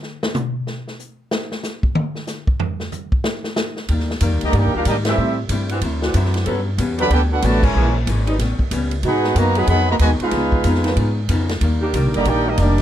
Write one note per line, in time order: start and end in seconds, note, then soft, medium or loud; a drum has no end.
0.03 snare soft
0.23 snare loud
0.34 hi-hat pedal medium
0.34 mid tom loud
0.67 snare soft
0.88 snare soft
0.99 hi-hat pedal medium
1.31 snare loud
1.52 snare medium
1.63 snare medium
1.63 hi-hat pedal medium
1.83 kick medium
1.95 high tom loud
2.15 snare soft
2.27 snare medium
2.27 hi-hat pedal medium
2.47 kick medium
2.60 floor tom loud
2.80 snare soft
2.92 floor tom medium
2.92 hi-hat pedal medium
3.12 kick medium
3.24 snare loud
3.44 snare medium
3.56 snare loud
3.56 hi-hat pedal medium
3.77 snare soft
3.88 4.20 D#2 loud
3.88 4.11 D#3 medium
3.88 4.11 G3 medium
3.88 4.12 A#3 medium
3.88 kick soft
3.88 ride medium
3.93 4.12 D4 medium
4.00 snare soft
4.10 snare medium
4.21 4.32 F2 loud
4.21 4.42 D#3 medium
4.21 4.43 G3 medium
4.21 4.43 A#3 medium
4.21 4.44 D4 medium
4.21 kick soft
4.21 hi-hat pedal medium
4.21 ride medium
4.32 4.42 D#2 medium
4.41 4.52 D2 medium
4.41 4.54 D3 medium
4.41 4.54 G3 loud
4.41 4.54 A#3 medium
4.41 4.54 G4 medium
4.41 4.54 D#5 medium
4.41 ride medium
4.45 4.55 D5 medium
4.45 4.55 A#5 loud
4.53 4.67 G2 medium
4.53 4.74 D#3 soft
4.53 4.75 G3 medium
4.53 4.76 A#3 medium
4.53 4.75 A#3 medium
4.53 4.75 D4 loud
4.53 4.76 D4 medium
4.53 4.75 G4 medium
4.53 kick soft
4.53 ride medium
4.57 4.75 D#4 loud
4.57 4.75 A#4 medium
4.57 4.75 D5 medium
4.57 4.75 G5 loud
4.66 4.75 D#2 medium
4.74 4.85 D2 medium
4.74 4.82 D#3 medium
4.74 4.82 A#3 medium
4.74 4.82 D4 medium
4.74 4.86 D4 medium
4.74 4.86 F4 medium
4.74 4.82 G4 loud
4.74 4.86 G4 medium
4.74 4.86 A#4 medium
4.74 4.86 F5 loud
4.85 5.17 G#2 loud
4.85 5.06 D#3 medium
4.85 4.95 G3 medium
4.85 5.07 G3 medium
4.85 5.07 A#3 medium
4.85 4.96 A#3 medium
4.85 4.97 A#3 medium
4.85 5.08 D4 medium
4.85 4.96 D4 medium
4.85 4.95 D#4 medium
4.85 4.97 G4 medium
4.85 4.96 D#5 loud
4.85 kick soft
4.85 hi-hat pedal medium
4.85 ride medium
5.05 5.14 E3 loud
5.05 5.36 G3 medium
5.05 5.14 A3 loud
5.05 5.14 C4 medium
5.05 5.36 C4 medium
5.05 5.37 C4 medium
5.05 5.36 E4 medium
5.05 5.14 G4 loud
5.05 5.37 G4 medium
5.05 5.37 A4 medium
5.05 5.37 E5 medium
5.05 snare medium
5.05 ride medium
5.17 5.39 A2 soft
5.17 5.48 A2 medium
5.17 5.40 G3 soft
5.17 5.40 C4 medium
5.17 5.41 E4 medium
5.49 5.81 G2 loud
5.49 5.71 A2 medium
5.49 5.72 G3 medium
5.49 5.72 C4 medium
5.49 5.72 E4 medium
5.49 kick soft
5.49 hi-hat pedal medium
5.49 ride medium
5.69 5.79 E3 loud
5.69 5.78 C4 medium
5.69 5.78 D4 medium
5.69 5.79 F#4 loud
5.69 ride medium
5.81 6.13 D2 medium
5.81 6.03 D3 medium
5.81 6.04 F#3 medium
5.81 6.04 C4 medium
5.81 6.05 E4 medium
5.81 kick soft
5.81 ride medium
6.02 6.44 E3 medium
6.02 6.44 C4 medium
6.02 6.44 D4 medium
6.02 6.44 F#4 loud
6.02 snare medium
6.14 6.45 F#2 loud
6.14 6.35 D3 medium
6.14 6.36 F#3 medium
6.14 6.36 C4 medium
6.14 6.37 E4 medium
6.14 kick soft
6.14 hi-hat pedal medium
6.14 ride medium
6.25 snare soft
6.34 snare medium
6.34 ride medium
6.45 6.67 G2 medium
6.45 6.77 G2 medium
6.45 6.60 F#3 loud
6.45 6.68 F#3 medium
6.45 6.60 B3 medium
6.45 6.68 B3 medium
6.45 6.60 C#4 medium
6.45 6.69 C#4 medium
6.45 6.60 A4 loud
6.45 kick soft
6.45 ride medium
6.78 7.09 E2 loud
6.78 7.00 G2 medium
6.78 7.00 F#3 medium
6.78 7.00 B3 medium
6.78 7.01 C#4 medium
6.78 kick soft
6.78 hi-hat pedal medium
6.78 ride medium
6.98 7.10 D3 loud
6.98 7.07 F#3 loud
6.98 7.10 F#3 loud
6.98 7.07 B3 medium
6.98 7.10 B3 loud
6.98 7.07 C#4 medium
6.98 7.07 G4 loud
6.98 7.11 A4 loud
6.98 7.11 D5 loud
6.98 7.11 F#5 medium
6.98 7.11 B5 loud
6.98 ride medium
7.10 7.42 D2 medium
7.10 7.32 G2 medium
7.10 7.33 F#3 medium
7.10 7.20 B3 medium
7.10 7.33 B3 medium
7.10 7.34 C#4 medium
7.10 7.20 D4 medium
7.10 7.21 D4 medium
7.10 7.20 G4 medium
7.10 7.22 A4 medium
7.10 7.21 B4 medium
7.10 7.21 G5 loud
7.10 kick soft
7.10 ride medium
7.30 7.42 B3 medium
7.30 7.42 D4 medium
7.30 7.43 D4 medium
7.30 7.42 F#4 medium
7.30 7.43 A4 medium
7.30 7.42 B4 medium
7.30 7.43 F#5 loud
7.41 7.74 A1 loud
7.41 7.64 G2 medium
7.41 7.63 D3 medium
7.41 7.62 F#3 medium
7.41 7.65 F#3 medium
7.41 7.62 A3 medium
7.41 7.65 B3 medium
7.41 7.63 F#4 medium
7.41 7.63 B4 medium
7.41 7.63 D5 loud
7.41 7.63 A5 loud
7.41 kick soft
7.41 hi-hat pedal medium
7.41 ride medium
7.45 7.66 C#4 medium
7.62 7.95 C#3 medium
7.62 7.95 E3 medium
7.62 7.95 G#3 medium
7.62 7.96 E4 medium
7.62 7.96 A#4 medium
7.62 7.96 C#5 medium
7.62 7.96 G#5 medium
7.62 kick loud
7.62 crash medium
7.75 8.06 A#1 loud
7.75 7.96 A#2 soft
7.75 7.89 E3 loud
7.75 7.97 E3 medium
7.75 7.97 G#3 medium
7.75 7.89 A#3 loud
7.75 7.89 C#4 medium
7.75 7.98 C#4 medium
7.75 7.89 G#4 loud
8.07 8.38 G#1 loud
8.07 8.29 A#2 medium
8.07 8.29 E3 medium
8.07 8.29 G#3 medium
8.07 8.30 C#4 medium
8.07 kick soft
8.07 hi-hat pedal medium
8.07 ride medium
8.27 8.36 G3 medium
8.27 8.36 B3 medium
8.27 8.35 C#4 medium
8.27 8.36 D#4 loud
8.27 ride medium
8.39 8.58 A1 medium
8.39 8.61 A2 medium
8.39 8.62 G3 medium
8.39 8.62 B3 medium
8.39 kick soft
8.39 snare soft
8.39 ride medium
8.43 8.63 C#4 medium
8.59 muted upright bass stroke soft
8.59 kick medium
8.71 9.03 C#2 loud
8.71 8.93 A2 medium
8.71 8.93 G3 medium
8.71 8.94 B3 medium
8.71 8.94 C#4 medium
8.71 kick soft
8.71 hi-hat pedal medium
8.71 ride medium
8.91 ride medium
9.03 9.35 G#2 medium
9.03 9.25 G#2 soft
9.03 9.26 F#3 medium
9.03 9.34 B3 medium
9.03 9.26 B3 soft
9.03 9.34 D#4 medium
9.03 9.26 D#4 medium
9.03 9.35 D#4 medium
9.03 9.34 F#4 medium
9.03 9.35 G#4 medium
9.03 9.35 B4 medium
9.03 9.35 F#5 loud
9.03 kick soft
9.03 ride medium
9.24 snare medium
9.35 9.67 F#2 loud
9.35 9.57 G#2 medium
9.35 9.58 F#3 medium
9.35 9.56 A#3 medium
9.35 9.58 B3 medium
9.35 9.58 D#4 medium
9.35 9.57 F#4 medium
9.35 9.57 B4 medium
9.35 9.57 D#5 medium
9.35 9.57 A#5 loud
9.35 kick soft
9.35 hi-hat pedal medium
9.35 ride medium
9.55 9.68 D#3 loud
9.55 9.98 F#3 loud
9.55 9.68 F#3 loud
9.55 9.98 B3 medium
9.55 9.67 B3 loud
9.55 9.98 D#4 medium
9.55 9.98 G#4 loud
9.55 9.68 G#4 medium
9.55 9.68 D#5 medium
9.55 9.68 F#5 medium
9.55 9.68 B5 loud
9.55 ride medium
9.67 9.99 F2 medium
9.67 9.90 G#2 soft
9.67 9.87 D#3 loud
9.67 9.87 F#3 medium
9.67 9.91 F#3 medium
9.67 9.87 B3 loud
9.67 9.87 G#4 loud
9.67 9.88 D#5 medium
9.67 9.87 F#5 loud
9.67 9.87 B5 loud
9.67 kick soft
9.67 ride medium
9.71 9.91 B3 medium
9.71 9.92 D#4 medium
9.90 9.95 A#3 medium
9.90 9.95 F#4 medium
9.90 9.95 B4 medium
9.90 9.95 D#5 medium
9.90 9.95 A#5 loud
9.99 10.19 D#2 loud
9.99 10.22 G#2 medium
9.99 10.10 B2 medium
9.99 10.10 D#3 medium
9.99 10.23 F#3 medium
9.99 10.10 G#3 medium
9.99 10.23 B3 medium
9.99 10.10 F#4 medium
9.99 10.10 B4 loud
9.99 10.10 D#5 medium
9.99 10.10 G#5 loud
9.99 kick soft
9.99 hi-hat pedal medium
9.99 ride medium
10.04 10.24 D#4 medium
10.20 11.13 G#3 medium
10.20 11.13 B3 medium
10.20 11.14 D#4 medium
10.20 11.13 F4 medium
10.20 11.14 G#4 medium
10.20 11.14 B4 medium
10.20 11.14 F5 medium
10.20 muted upright bass stroke soft
10.20 ride medium
10.31 10.63 C#2 loud
10.31 10.54 C#3 medium
10.31 10.55 F3 medium
10.31 kick soft
10.31 snare soft
10.31 ride medium
10.35 10.55 B3 medium
10.35 10.56 D#4 medium
10.52 kick medium
10.64 10.96 F2 loud
10.64 10.86 C#3 medium
10.64 10.86 F3 medium
10.64 10.87 B3 medium
10.64 10.87 D#4 medium
10.64 kick soft
10.64 hi-hat pedal medium
10.64 ride medium
10.75 snare soft
10.84 10.93 D#3 loud
10.84 10.93 B3 medium
10.84 10.93 C#4 medium
10.84 10.93 F4 loud
10.84 snare medium
10.84 ride medium
10.96 11.28 G#2 loud
10.96 11.18 C#3 medium
10.96 11.18 F3 medium
10.96 11.19 B3 medium
10.96 11.20 D#4 medium
10.96 kick soft
10.96 ride medium
11.29 11.60 F2 loud
11.29 11.50 C#3 medium
11.29 11.51 F3 medium
11.29 11.51 B3 medium
11.29 11.52 D#4 medium
11.29 kick soft
11.29 hi-hat pedal medium
11.29 ride medium
11.49 snare medium
11.49 ride medium
11.61 11.92 D#2 loud
11.61 11.83 D#3 medium
11.61 11.83 G3 medium
11.61 11.84 A#3 medium
11.61 11.84 D4 medium
11.61 kick soft
11.61 ride medium
11.81 12.23 D#3 loud
11.81 12.23 A#3 medium
11.81 12.23 D4 medium
11.81 12.23 G4 loud
11.93 12.04 C2 loud
11.93 12.15 D#3 medium
11.93 12.16 G3 medium
11.93 12.16 A#3 medium
11.93 12.16 D4 medium
11.93 kick soft
11.93 hi-hat pedal medium
11.93 ride medium
12.04 12.14 A#1 medium
12.14 12.25 G1 medium
12.14 12.26 D3 loud
12.14 12.26 G3 loud
12.14 12.26 A#3 loud
12.14 12.26 G4 loud
12.14 12.26 D5 medium
12.14 12.26 D#5 medium
12.14 12.26 A#5 loud
12.14 ride medium
12.25 12.57 A#1 medium
12.25 12.47 D#3 medium
12.25 12.48 G3 soft
12.25 12.46 A#3 medium
12.25 12.47 D4 medium
12.25 12.47 D#4 loud
12.25 12.46 G4 loud
12.25 12.47 A#4 medium
12.25 12.47 D5 loud
12.25 12.47 G5 loud
12.25 kick soft
12.25 ride medium
12.29 12.49 A#3 medium
12.29 12.49 D4 medium
12.47 12.59 G3 medium
12.47 12.59 A#3 medium
12.47 12.60 A#3 medium
12.47 12.60 D4 medium
12.47 12.59 D#4 medium
12.47 12.60 G4 medium
12.47 12.60 D#5 loud
12.58 12.82 F1 loud
12.58 12.80 D#3 medium
12.58 12.80 G3 medium
12.58 12.79 G3 medium
12.58 12.81 A#3 medium
12.58 12.78 A#3 medium
12.58 12.80 A#3 medium
12.58 12.79 D4 medium
12.58 12.80 D#4 medium
12.58 12.80 G4 medium
12.58 12.79 D5 loud
12.58 kick soft
12.58 hi-hat pedal medium
12.58 ride medium
12.62 12.81 D4 medium
12.78 snare medium
12.78 ride medium